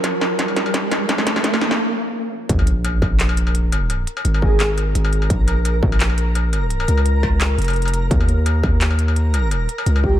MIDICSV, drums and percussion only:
0, 0, Header, 1, 3, 480
1, 0, Start_track
1, 0, Key_signature, -5, "minor"
1, 0, Tempo, 350877
1, 1491, Time_signature, 4, 2, 24, 8
1, 13950, End_track
2, 0, Start_track
2, 0, Title_t, "Struck metal"
2, 52, Note_on_c, 9, 77, 52
2, 189, Note_off_c, 9, 77, 0
2, 292, Note_on_c, 9, 77, 75
2, 429, Note_off_c, 9, 77, 0
2, 661, Note_on_c, 9, 77, 50
2, 798, Note_off_c, 9, 77, 0
2, 902, Note_on_c, 9, 77, 77
2, 1039, Note_off_c, 9, 77, 0
2, 1251, Note_on_c, 9, 77, 51
2, 1388, Note_off_c, 9, 77, 0
2, 1491, Note_on_c, 9, 77, 75
2, 1627, Note_off_c, 9, 77, 0
2, 1862, Note_on_c, 9, 77, 51
2, 1999, Note_off_c, 9, 77, 0
2, 2101, Note_on_c, 9, 77, 76
2, 2238, Note_off_c, 9, 77, 0
2, 3542, Note_on_c, 9, 77, 55
2, 3679, Note_off_c, 9, 77, 0
2, 3892, Note_on_c, 9, 77, 84
2, 4029, Note_off_c, 9, 77, 0
2, 4135, Note_on_c, 9, 77, 57
2, 4271, Note_off_c, 9, 77, 0
2, 4502, Note_on_c, 9, 77, 85
2, 4638, Note_off_c, 9, 77, 0
2, 4744, Note_on_c, 9, 77, 55
2, 4881, Note_off_c, 9, 77, 0
2, 5094, Note_on_c, 9, 77, 83
2, 5231, Note_off_c, 9, 77, 0
2, 5332, Note_on_c, 9, 77, 52
2, 5469, Note_off_c, 9, 77, 0
2, 5701, Note_on_c, 9, 77, 78
2, 5838, Note_off_c, 9, 77, 0
2, 5943, Note_on_c, 9, 77, 54
2, 6080, Note_off_c, 9, 77, 0
2, 6293, Note_on_c, 9, 77, 84
2, 6430, Note_off_c, 9, 77, 0
2, 6533, Note_on_c, 9, 77, 53
2, 6670, Note_off_c, 9, 77, 0
2, 6903, Note_on_c, 9, 77, 79
2, 7039, Note_off_c, 9, 77, 0
2, 7140, Note_on_c, 9, 77, 54
2, 7277, Note_off_c, 9, 77, 0
2, 7491, Note_on_c, 9, 77, 78
2, 7628, Note_off_c, 9, 77, 0
2, 7731, Note_on_c, 9, 77, 53
2, 7867, Note_off_c, 9, 77, 0
2, 8102, Note_on_c, 9, 77, 80
2, 8239, Note_off_c, 9, 77, 0
2, 8341, Note_on_c, 9, 77, 51
2, 8477, Note_off_c, 9, 77, 0
2, 8691, Note_on_c, 9, 77, 76
2, 8828, Note_off_c, 9, 77, 0
2, 8932, Note_on_c, 9, 77, 51
2, 9069, Note_off_c, 9, 77, 0
2, 9302, Note_on_c, 9, 77, 74
2, 9439, Note_off_c, 9, 77, 0
2, 9542, Note_on_c, 9, 77, 49
2, 9679, Note_off_c, 9, 77, 0
2, 9894, Note_on_c, 9, 77, 78
2, 10030, Note_off_c, 9, 77, 0
2, 10134, Note_on_c, 9, 77, 51
2, 10270, Note_off_c, 9, 77, 0
2, 10507, Note_on_c, 9, 77, 78
2, 10644, Note_off_c, 9, 77, 0
2, 10745, Note_on_c, 9, 77, 50
2, 10882, Note_off_c, 9, 77, 0
2, 11225, Note_on_c, 9, 77, 50
2, 11362, Note_off_c, 9, 77, 0
2, 11573, Note_on_c, 9, 77, 78
2, 11710, Note_off_c, 9, 77, 0
2, 11813, Note_on_c, 9, 77, 50
2, 11950, Note_off_c, 9, 77, 0
2, 12183, Note_on_c, 9, 77, 76
2, 12320, Note_off_c, 9, 77, 0
2, 12424, Note_on_c, 9, 77, 51
2, 12561, Note_off_c, 9, 77, 0
2, 12775, Note_on_c, 9, 77, 76
2, 12912, Note_off_c, 9, 77, 0
2, 13014, Note_on_c, 9, 77, 52
2, 13151, Note_off_c, 9, 77, 0
2, 13384, Note_on_c, 9, 77, 78
2, 13521, Note_off_c, 9, 77, 0
2, 13622, Note_on_c, 9, 77, 54
2, 13759, Note_off_c, 9, 77, 0
2, 13950, End_track
3, 0, Start_track
3, 0, Title_t, "Drums"
3, 50, Note_on_c, 9, 36, 95
3, 52, Note_on_c, 9, 38, 79
3, 52, Note_on_c, 9, 42, 81
3, 187, Note_off_c, 9, 36, 0
3, 189, Note_off_c, 9, 38, 0
3, 189, Note_off_c, 9, 42, 0
3, 292, Note_on_c, 9, 38, 79
3, 429, Note_off_c, 9, 38, 0
3, 531, Note_on_c, 9, 36, 94
3, 532, Note_on_c, 9, 38, 82
3, 532, Note_on_c, 9, 42, 83
3, 668, Note_off_c, 9, 36, 0
3, 669, Note_off_c, 9, 38, 0
3, 669, Note_off_c, 9, 42, 0
3, 772, Note_on_c, 9, 38, 84
3, 772, Note_on_c, 9, 42, 68
3, 909, Note_off_c, 9, 38, 0
3, 909, Note_off_c, 9, 42, 0
3, 1011, Note_on_c, 9, 36, 99
3, 1013, Note_on_c, 9, 38, 87
3, 1013, Note_on_c, 9, 42, 80
3, 1147, Note_off_c, 9, 36, 0
3, 1150, Note_off_c, 9, 38, 0
3, 1150, Note_off_c, 9, 42, 0
3, 1251, Note_on_c, 9, 38, 89
3, 1251, Note_on_c, 9, 42, 62
3, 1388, Note_off_c, 9, 38, 0
3, 1388, Note_off_c, 9, 42, 0
3, 1490, Note_on_c, 9, 36, 105
3, 1491, Note_on_c, 9, 38, 92
3, 1491, Note_on_c, 9, 42, 78
3, 1618, Note_off_c, 9, 38, 0
3, 1618, Note_on_c, 9, 38, 83
3, 1627, Note_off_c, 9, 36, 0
3, 1627, Note_off_c, 9, 42, 0
3, 1732, Note_off_c, 9, 38, 0
3, 1732, Note_on_c, 9, 38, 94
3, 1732, Note_on_c, 9, 42, 67
3, 1862, Note_off_c, 9, 38, 0
3, 1862, Note_on_c, 9, 38, 83
3, 1869, Note_off_c, 9, 42, 0
3, 1970, Note_off_c, 9, 38, 0
3, 1970, Note_on_c, 9, 38, 101
3, 1970, Note_on_c, 9, 42, 80
3, 1971, Note_on_c, 9, 36, 98
3, 2101, Note_off_c, 9, 38, 0
3, 2101, Note_on_c, 9, 38, 85
3, 2107, Note_off_c, 9, 42, 0
3, 2108, Note_off_c, 9, 36, 0
3, 2209, Note_off_c, 9, 38, 0
3, 2209, Note_on_c, 9, 38, 98
3, 2338, Note_off_c, 9, 38, 0
3, 2338, Note_on_c, 9, 38, 89
3, 2475, Note_off_c, 9, 38, 0
3, 3411, Note_on_c, 9, 36, 122
3, 3412, Note_on_c, 9, 42, 83
3, 3548, Note_off_c, 9, 36, 0
3, 3549, Note_off_c, 9, 42, 0
3, 3652, Note_on_c, 9, 42, 70
3, 3789, Note_off_c, 9, 42, 0
3, 3892, Note_on_c, 9, 42, 85
3, 4029, Note_off_c, 9, 42, 0
3, 4131, Note_on_c, 9, 36, 110
3, 4268, Note_off_c, 9, 36, 0
3, 4373, Note_on_c, 9, 39, 120
3, 4373, Note_on_c, 9, 42, 86
3, 4510, Note_off_c, 9, 39, 0
3, 4510, Note_off_c, 9, 42, 0
3, 4613, Note_on_c, 9, 42, 69
3, 4750, Note_off_c, 9, 42, 0
3, 4853, Note_on_c, 9, 42, 84
3, 4990, Note_off_c, 9, 42, 0
3, 5094, Note_on_c, 9, 42, 64
3, 5231, Note_off_c, 9, 42, 0
3, 5332, Note_on_c, 9, 42, 85
3, 5469, Note_off_c, 9, 42, 0
3, 5572, Note_on_c, 9, 42, 71
3, 5708, Note_off_c, 9, 42, 0
3, 5812, Note_on_c, 9, 42, 84
3, 5949, Note_off_c, 9, 42, 0
3, 6051, Note_on_c, 9, 36, 65
3, 6188, Note_off_c, 9, 36, 0
3, 6293, Note_on_c, 9, 39, 127
3, 6293, Note_on_c, 9, 42, 83
3, 6430, Note_off_c, 9, 39, 0
3, 6430, Note_off_c, 9, 42, 0
3, 6533, Note_on_c, 9, 42, 71
3, 6670, Note_off_c, 9, 42, 0
3, 6774, Note_on_c, 9, 42, 82
3, 6911, Note_off_c, 9, 42, 0
3, 7012, Note_on_c, 9, 42, 64
3, 7149, Note_off_c, 9, 42, 0
3, 7250, Note_on_c, 9, 36, 127
3, 7252, Note_on_c, 9, 42, 83
3, 7387, Note_off_c, 9, 36, 0
3, 7389, Note_off_c, 9, 42, 0
3, 7491, Note_on_c, 9, 42, 69
3, 7628, Note_off_c, 9, 42, 0
3, 7731, Note_on_c, 9, 42, 83
3, 7867, Note_off_c, 9, 42, 0
3, 7970, Note_on_c, 9, 36, 112
3, 8107, Note_off_c, 9, 36, 0
3, 8213, Note_on_c, 9, 39, 127
3, 8213, Note_on_c, 9, 42, 80
3, 8349, Note_off_c, 9, 39, 0
3, 8349, Note_off_c, 9, 42, 0
3, 8451, Note_on_c, 9, 42, 67
3, 8588, Note_off_c, 9, 42, 0
3, 8691, Note_on_c, 9, 42, 84
3, 8828, Note_off_c, 9, 42, 0
3, 8932, Note_on_c, 9, 42, 62
3, 9069, Note_off_c, 9, 42, 0
3, 9171, Note_on_c, 9, 42, 81
3, 9308, Note_off_c, 9, 42, 0
3, 9413, Note_on_c, 9, 42, 68
3, 9550, Note_off_c, 9, 42, 0
3, 9652, Note_on_c, 9, 42, 81
3, 9789, Note_off_c, 9, 42, 0
3, 9891, Note_on_c, 9, 36, 64
3, 10028, Note_off_c, 9, 36, 0
3, 10134, Note_on_c, 9, 39, 125
3, 10134, Note_on_c, 9, 42, 78
3, 10270, Note_off_c, 9, 39, 0
3, 10270, Note_off_c, 9, 42, 0
3, 10375, Note_on_c, 9, 42, 61
3, 10419, Note_off_c, 9, 42, 0
3, 10419, Note_on_c, 9, 42, 50
3, 10457, Note_off_c, 9, 42, 0
3, 10457, Note_on_c, 9, 42, 41
3, 10507, Note_off_c, 9, 42, 0
3, 10507, Note_on_c, 9, 42, 35
3, 10535, Note_off_c, 9, 42, 0
3, 10535, Note_on_c, 9, 42, 28
3, 10580, Note_off_c, 9, 42, 0
3, 10580, Note_on_c, 9, 42, 24
3, 10617, Note_off_c, 9, 42, 0
3, 10617, Note_on_c, 9, 42, 36
3, 10697, Note_off_c, 9, 42, 0
3, 10697, Note_on_c, 9, 42, 49
3, 10776, Note_off_c, 9, 42, 0
3, 10776, Note_on_c, 9, 42, 61
3, 10856, Note_off_c, 9, 42, 0
3, 10856, Note_on_c, 9, 42, 61
3, 10992, Note_off_c, 9, 42, 0
3, 11092, Note_on_c, 9, 36, 125
3, 11096, Note_on_c, 9, 42, 77
3, 11229, Note_off_c, 9, 36, 0
3, 11233, Note_off_c, 9, 42, 0
3, 11334, Note_on_c, 9, 42, 64
3, 11470, Note_off_c, 9, 42, 0
3, 11573, Note_on_c, 9, 42, 76
3, 11710, Note_off_c, 9, 42, 0
3, 11812, Note_on_c, 9, 36, 110
3, 11949, Note_off_c, 9, 36, 0
3, 12054, Note_on_c, 9, 39, 124
3, 12054, Note_on_c, 9, 42, 79
3, 12191, Note_off_c, 9, 39, 0
3, 12191, Note_off_c, 9, 42, 0
3, 12295, Note_on_c, 9, 42, 63
3, 12432, Note_off_c, 9, 42, 0
3, 12535, Note_on_c, 9, 42, 76
3, 12672, Note_off_c, 9, 42, 0
3, 12775, Note_on_c, 9, 42, 58
3, 12912, Note_off_c, 9, 42, 0
3, 13014, Note_on_c, 9, 42, 78
3, 13151, Note_off_c, 9, 42, 0
3, 13255, Note_on_c, 9, 42, 65
3, 13392, Note_off_c, 9, 42, 0
3, 13494, Note_on_c, 9, 42, 78
3, 13630, Note_off_c, 9, 42, 0
3, 13731, Note_on_c, 9, 36, 60
3, 13868, Note_off_c, 9, 36, 0
3, 13950, End_track
0, 0, End_of_file